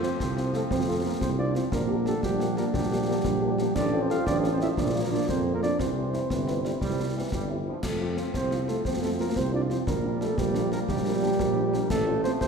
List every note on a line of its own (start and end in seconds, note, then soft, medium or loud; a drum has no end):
0.00 0.11 F2 medium
0.00 1.69 F3 medium
0.00 1.69 C4 medium
0.00 0.19 C4 medium
0.00 0.09 C4 soft
0.00 0.09 F4 soft
0.00 0.19 C5 medium
0.00 snare soft
0.19 0.63 C2 medium
0.19 0.51 C4 medium
0.19 0.51 C5 medium
0.19 concert bass drum medium
0.19 snare medium
0.37 0.43 C4 medium
0.37 0.43 F4 soft
0.37 snare soft
0.54 0.61 A3 medium
0.54 0.60 C4 medium
0.54 0.60 F4 soft
0.54 0.62 A4 medium
0.54 snare soft
0.71 1.13 F2 medium
0.71 0.90 C4 medium
0.71 0.79 C5 medium
0.71 concert bass drum medium
0.71 snare medium
0.88 1.04 A3 medium
0.88 0.94 C4 soft
0.88 0.94 F4 medium
0.88 0.96 A4 medium
1.05 1.23 A#3 medium
1.05 1.11 C4 medium
1.05 1.11 F4 medium
1.05 1.13 A#4 medium
1.21 1.60 C2 medium
1.21 1.40 C4 medium
1.21 1.30 C5 medium
1.21 concert bass drum medium
1.21 snare medium
1.39 1.45 C4 medium
1.39 1.57 D4 medium
1.39 1.45 F4 medium
1.39 1.54 D5 medium
1.55 1.71 C4 medium
1.55 1.62 C4 medium
1.55 1.62 F4 medium
1.55 1.64 C5 medium
1.55 snare medium
1.72 2.15 A#1 medium
1.72 3.76 D3 medium
1.72 2.07 A#3 medium
1.72 3.72 D4 medium
1.72 2.04 A#4 medium
1.72 concert bass drum medium
1.72 snare medium
1.89 1.96 A#3 medium
1.89 1.95 D4 medium
1.89 1.95 G4 medium
2.06 2.22 A3 medium
2.06 2.13 A#3 medium
2.06 2.12 D4 medium
2.06 2.12 G4 medium
2.06 2.23 A4 medium
2.06 snare soft
2.22 2.65 A#1 medium
2.22 2.54 G3 medium
2.22 2.55 G4 medium
2.22 concert bass drum medium
2.22 snare medium
2.40 2.47 A#3 medium
2.40 2.47 D4 medium
2.40 2.47 G4 medium
2.40 snare medium
2.57 2.76 A#3 medium
2.57 2.63 A#3 medium
2.57 2.63 D4 medium
2.57 2.63 G4 medium
2.57 2.65 A#4 medium
2.57 snare medium
2.73 3.16 A#1 medium
2.73 3.77 G3 medium
2.73 3.72 G4 medium
2.73 concert bass drum medium
2.73 snare medium
2.91 2.97 A#3 medium
2.91 2.97 D4 medium
2.91 2.97 G4 medium
3.08 3.14 A#3 medium
3.08 3.14 D4 medium
3.08 3.14 G4 medium
3.24 3.67 A#1 medium
3.24 concert bass drum medium
3.24 snare medium
3.42 3.48 A#3 medium
3.42 3.48 D4 medium
3.42 3.48 G4 medium
3.58 3.65 A#3 medium
3.58 3.65 D4 medium
3.58 3.65 G4 medium
3.58 snare medium
3.75 4.18 A1 medium
3.75 5.75 F3 medium
3.75 4.74 C4 medium
3.75 4.01 D4 medium
3.75 4.03 D5 loud
3.75 concert bass drum medium
3.75 snare medium
3.75 crash soft
3.93 3.99 C4 medium
3.93 3.99 F4 medium
3.93 3.99 A4 medium
4.01 4.11 C4 medium
4.01 4.10 C5 medium
4.10 4.16 C4 medium
4.10 4.28 F4 medium
4.10 4.16 F4 medium
4.10 4.16 A4 medium
4.10 4.26 F5 medium
4.10 snare soft
4.26 4.69 A1 medium
4.26 4.54 D4 medium
4.26 4.38 D5 loud
4.26 concert bass drum medium
4.26 snare medium
4.44 4.50 C4 medium
4.44 4.50 F4 medium
4.44 4.50 A4 medium
4.44 snare soft
4.53 4.60 C4 medium
4.53 4.60 C5 medium
4.61 4.67 C4 medium
4.61 4.68 E4 medium
4.61 4.67 F4 medium
4.61 4.67 A4 medium
4.61 4.69 E5 medium
4.61 snare soft
4.77 5.20 A#1 medium
4.77 5.79 A#3 medium
4.77 4.89 D4 medium
4.77 5.05 D5 medium
4.77 concert bass drum medium
4.77 snare medium
4.95 5.01 A#3 medium
4.95 5.01 F4 medium
5.03 5.11 A#3 medium
5.03 5.13 A#4 medium
5.11 5.18 A#3 medium
5.11 5.27 D4 medium
5.11 5.18 F4 medium
5.11 5.28 D5 medium
5.29 5.71 F2 medium
5.29 5.53 C4 medium
5.29 5.41 C5 medium
5.29 concert bass drum medium
5.29 snare medium
5.46 5.52 A#3 medium
5.46 5.52 F4 medium
5.54 5.62 A#3 medium
5.54 5.62 A#4 medium
5.62 5.69 A#3 soft
5.62 5.82 D4 medium
5.62 5.69 F4 medium
5.62 5.78 D5 medium
5.62 snare soft
5.79 6.22 C2 medium
5.79 6.24 E3 medium
5.79 6.27 C4 medium
5.79 7.66 C4 medium
5.79 7.62 C5 medium
5.79 concert bass drum medium
5.79 snare medium
5.97 6.03 G3 soft
5.97 6.03 C4 medium
5.97 6.03 E4 medium
6.13 6.20 G3 medium
6.13 6.20 C4 soft
6.13 6.20 E4 soft
6.13 snare soft
6.30 6.73 G1 medium
6.30 6.62 E3 medium
6.30 concert bass drum medium
6.30 snare medium
6.47 6.53 G3 medium
6.47 6.54 C4 soft
6.47 6.53 E4 medium
6.47 snare soft
6.64 6.72 G3 medium
6.64 6.71 G3 soft
6.64 6.71 C4 soft
6.64 6.71 E4 soft
6.64 snare soft
6.81 7.24 C2 medium
6.81 7.13 G3 medium
6.81 concert bass drum medium
6.81 snare medium
6.99 7.05 G3 soft
6.99 7.05 C4 soft
6.99 7.05 E4 soft
7.15 7.32 E3 medium
7.15 7.22 G3 soft
7.15 7.21 C4 soft
7.15 7.22 E4 soft
7.32 7.71 G1 medium
7.32 7.49 G3 medium
7.32 concert bass drum medium
7.32 snare medium
7.50 7.67 E3 medium
7.50 7.56 G3 medium
7.50 7.56 C4 soft
7.50 7.56 E4 soft
7.67 7.82 F3 soft
7.67 7.73 G3 soft
7.67 7.73 C4 medium
7.67 7.73 E4 soft
7.83 8.26 F2 medium
7.83 9.83 F3 medium
7.83 8.15 A3 medium
7.83 9.83 C4 medium
7.83 8.15 A4 medium
7.83 concert bass drum medium
7.83 snare medium
7.83 crash soft
8.01 8.07 F3 soft
8.01 8.07 C4 medium
8.01 8.07 F4 soft
8.17 8.23 F3 soft
8.17 8.33 C4 medium
8.17 8.24 C4 soft
8.17 8.24 F4 soft
8.17 8.26 C5 medium
8.17 snare soft
8.34 8.76 C2 medium
8.34 8.66 C4 medium
8.34 8.70 C5 medium
8.34 concert bass drum medium
8.34 snare medium
8.51 8.58 F3 soft
8.51 8.57 C4 soft
8.51 8.57 F4 medium
8.51 snare soft
8.68 8.75 F3 soft
8.68 8.84 A3 medium
8.68 8.75 C4 medium
8.68 8.75 F4 medium
8.68 8.85 A4 medium
8.68 snare soft
8.85 9.27 F2 medium
8.85 9.04 C4 medium
8.85 8.93 C5 medium
8.85 concert bass drum medium
8.85 snare medium
9.02 9.09 F3 medium
9.02 9.20 A3 medium
9.02 9.09 C4 medium
9.02 9.09 F4 medium
9.02 9.11 A4 medium
9.18 9.25 F3 soft
9.18 9.35 A#3 medium
9.18 9.25 C4 medium
9.18 9.25 F4 soft
9.18 9.39 A#4 medium
9.36 9.78 C2 medium
9.36 9.52 C4 medium
9.36 9.54 C5 medium
9.36 concert bass drum medium
9.36 snare medium
9.52 9.59 F3 medium
9.52 9.60 C4 medium
9.52 9.68 D4 medium
9.52 9.60 F4 medium
9.52 9.62 D5 medium
9.70 9.76 F3 medium
9.70 9.89 C4 medium
9.70 9.76 C4 soft
9.70 9.76 F4 medium
9.70 9.78 C5 medium
9.70 snare soft
9.86 10.29 A#1 medium
9.86 11.86 G3 medium
9.86 11.90 A#3 medium
9.86 10.20 A#3 medium
9.86 10.23 A#4 medium
9.86 concert bass drum medium
9.86 snare medium
10.04 10.10 G3 medium
10.04 10.10 A#3 medium
10.04 10.10 D4 medium
10.21 10.27 G3 medium
10.21 10.39 A3 medium
10.21 10.27 A#3 medium
10.21 10.27 D4 medium
10.21 10.39 A4 medium
10.21 snare soft
10.37 10.80 A#1 medium
10.37 10.73 G3 medium
10.37 10.72 G4 loud
10.37 concert bass drum medium
10.37 snare medium
10.54 10.61 G3 medium
10.54 10.61 A#3 medium
10.54 10.61 D4 medium
10.54 snare medium
10.71 10.77 G3 medium
10.71 10.77 A#3 medium
10.71 10.88 A#3 medium
10.71 10.78 D4 medium
10.71 10.80 A#4 loud
10.71 snare soft
10.89 11.31 A#1 medium
10.89 11.86 G3 loud
10.89 11.86 G4 medium
10.89 concert bass drum medium
10.89 snare medium
11.06 11.12 G3 medium
11.06 11.12 A#3 medium
11.06 11.12 D4 medium
11.23 11.29 G3 medium
11.23 11.29 A#3 medium
11.23 11.29 D4 medium
11.39 11.82 A#1 medium
11.39 concert bass drum medium
11.39 snare medium
11.56 11.62 G3 medium
11.56 11.62 A#3 medium
11.56 11.62 D4 medium
11.73 11.79 G3 medium
11.73 11.79 A#3 medium
11.73 11.79 D4 medium
11.73 snare soft
11.90 12.32 A1 medium
11.90 12.47 F3 medium
11.90 12.47 A3 medium
11.90 12.26 A3 medium
11.90 12.22 A4 loud
11.90 concert bass drum medium
11.90 snare medium
11.90 crash soft
12.07 12.13 F3 medium
12.07 12.13 C4 medium
12.07 12.13 F4 medium
12.24 12.30 F3 medium
12.24 12.41 C4 medium
12.24 12.31 C4 medium
12.24 12.30 F4 medium
12.24 12.31 C5 loud
12.24 snare medium
12.40 12.47 A1 medium
12.40 12.47 C4 medium
12.40 12.47 C5 loud
12.40 concert bass drum medium
12.40 snare medium